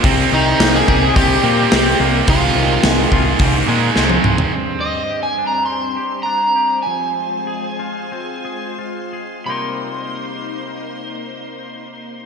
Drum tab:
HH |o---o---o---o---|o---o---o-------|----------------|----------------|
SD |----o-------o---|----o-------o---|----------------|----------------|
T1 |----------------|-------------o--|----------------|----------------|
T2 |----------------|--------------o-|----------------|----------------|
FT |----------------|---------------o|----------------|----------------|
BD |o-----o-o-------|o-----o-o-------|----------------|----------------|

HH |----------------|
SD |----------------|
T1 |----------------|
T2 |----------------|
FT |----------------|
BD |----------------|